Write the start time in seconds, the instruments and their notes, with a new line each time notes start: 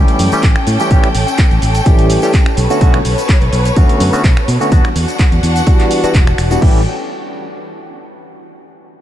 Already playing: tine electric piano E3 G3 A3 C#4 G4, violin section C#4 A4 G5
0.08 closed hi-hat, tambourine
0.19 fingered electric bass F#2, open hi-hat, shaker
0.32 tine electric piano E3 G3 A3 C#4 G4, muted fingered electric bass stroke, tambourine, shaker
0.43 fingered electric bass A1, kick, clap, closed hi-hat, tambourine, shaker
0.56 finger snap, tambourine
0.67 fingered electric bass A2, open hi-hat, shaker
0.80 tine electric piano E3 G3 A3 C#4 G4, tambourine, shaker
0.91 fingered electric bass A1, tine electric piano E3 G3 A3 C#4 G4, kick, closed hi-hat, tambourine, shaker
1.04 finger snap, closed hi-hat, tambourine
1.15 fingered electric bass A1, open hi-hat, shaker
1.27 closed hi-hat, tambourine, shaker
1.38 kick, clap, closed hi-hat, tambourine, shaker
1.51 fingered electric bass A1, closed hi-hat, tambourine
1.62 fingered electric bass A1, open hi-hat, shaker
1.75 closed hi-hat, tambourine, shaker
1.86 fingered electric bass A1, tine electric piano E3 G3 A3 C#4 G4, kick, closed hi-hat, tambourine, shaker
1.99 closed hi-hat, tambourine
2.10 open hi-hat, shaker
2.22 tine electric piano E3 G3 A3 C#4 G4, tambourine, shaker
2.34 kick, clap, closed hi-hat, shaker
2.46 finger snap, tambourine
2.57 fingered electric bass B1, violin section B4 C#5, open hi-hat, shaker
2.70 tine electric piano D3 A3 B3 C#4 F#4, tambourine, shaker
2.81 fingered electric bass B1, tine electric piano D3 A3 B3 C#4 F#4, kick, closed hi-hat, tambourine, shaker
2.94 finger snap, closed hi-hat, tambourine
3.05 fingered electric bass B1, open hi-hat, shaker
3.18 closed hi-hat, tambourine, shaker
3.29 kick, clap, closed hi-hat, shaker
3.41 fingered electric bass B1, closed hi-hat, tambourine
3.53 fingered electric bass B1, open hi-hat, shaker
3.65 closed hi-hat, tambourine, shaker
3.76 fingered electric bass E2, tine electric piano D3 A3 B3 C#4 F#4, kick, closed hi-hat, tambourine, shaker
3.89 muted fingered electric bass stroke, closed hi-hat, tambourine
4.00 fingered electric bass F#2, open hi-hat, shaker
4.13 tine electric piano D3 A3 B3 C#4 F#4, muted fingered electric bass stroke, tambourine, shaker
4.24 fingered electric bass B1, kick, clap, closed hi-hat, tambourine, shaker
4.37 finger snap, tambourine
4.48 fingered electric bass B2, open hi-hat, shaker
4.60 tine electric piano D3 A3 B3 C#4 F#4, tambourine, shaker
4.71 fingered electric bass E2, tine electric piano E3 G3 B3 D4 F#4, violin section D4 F#4 F#5, kick, closed hi-hat, tambourine, shaker
4.84 finger snap, closed hi-hat, tambourine
4.96 fingered electric bass E2, open hi-hat, shaker
5.08 closed hi-hat, tambourine, shaker
5.19 kick, clap, closed hi-hat, shaker
5.32 fingered electric bass E2, closed hi-hat, tambourine
5.43 fingered electric bass E2, open hi-hat, shaker
5.56 closed hi-hat, tambourine, shaker
5.66 tine electric piano E3 G3 B3 D4 F#4, kick, closed hi-hat, tambourine, shaker
5.80 clap, closed hi-hat, tambourine
5.91 open hi-hat, shaker
6.03 tine electric piano E3 G3 B3 D4 F#4, muted fingered electric bass stroke, closed hi-hat, tambourine, shaker
6.14 fingered electric bass E1, kick, clap, closed hi-hat, shaker
6.27 finger snap, tambourine
6.38 fingered electric bass E1, finger snap, open hi-hat, shaker
6.51 tine electric piano E3 G3 B3 D4 F#4, closed hi-hat, tambourine, shaker
6.61 fingered electric bass A1, tine electric piano E3 G3 A3 C#4 G4, violin section C#4 A4 G5, kick, crash